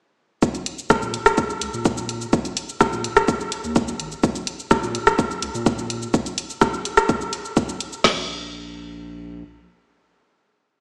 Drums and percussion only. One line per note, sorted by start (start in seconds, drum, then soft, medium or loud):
0.42 kick loud
0.42 shaker medium
0.55 closed hi-hat soft
0.55 shaker soft
0.66 closed hi-hat medium
0.78 shaker soft
0.90 kick loud
0.90 cross-stick medium
0.90 shaker medium
1.02 shaker soft
1.14 closed hi-hat medium
1.26 cross-stick medium
1.26 shaker soft
1.38 kick loud
1.38 shaker medium
1.50 shaker soft
1.61 closed hi-hat medium
1.74 shaker soft
1.85 kick loud
1.85 shaker medium
1.97 shaker soft
2.09 closed hi-hat medium
2.21 shaker soft
2.33 kick loud
2.33 shaker medium
2.45 closed hi-hat soft
2.45 shaker soft
2.57 closed hi-hat medium
2.69 shaker soft
2.81 kick loud
2.81 cross-stick medium
2.81 shaker medium
2.93 shaker soft
3.04 closed hi-hat medium
3.17 cross-stick medium
3.17 shaker soft
3.28 kick loud
3.28 shaker medium
3.40 shaker soft
3.52 closed hi-hat medium
3.64 shaker soft
3.76 kick loud
3.76 shaker medium
3.88 shaker soft
4.00 closed hi-hat medium
4.12 shaker soft
4.23 kick loud
4.23 shaker medium
4.35 closed hi-hat soft
4.35 shaker soft
4.47 closed hi-hat medium
4.59 shaker soft
4.71 kick loud
4.71 cross-stick medium
4.71 shaker medium
4.83 shaker soft
4.95 closed hi-hat medium
5.07 cross-stick medium
5.07 shaker soft
5.19 kick loud
5.19 shaker medium
5.31 shaker soft
5.42 closed hi-hat medium
5.55 shaker soft
5.66 kick loud
5.66 shaker medium
5.78 shaker soft
5.90 closed hi-hat medium
6.02 shaker soft
6.14 kick loud
6.14 shaker medium
6.26 closed hi-hat soft
6.26 shaker soft
6.38 closed hi-hat medium
6.50 shaker soft
6.61 kick loud
6.61 cross-stick medium
6.61 shaker medium
6.74 shaker soft
6.85 closed hi-hat medium
6.97 cross-stick medium
6.97 shaker soft
7.09 kick loud
7.09 shaker medium
7.21 shaker soft
7.33 closed hi-hat medium
7.45 shaker soft
7.57 kick loud
7.57 shaker medium
7.69 shaker soft
7.80 closed hi-hat medium
7.93 shaker soft
8.04 kick loud
8.04 snare loud
8.04 crash medium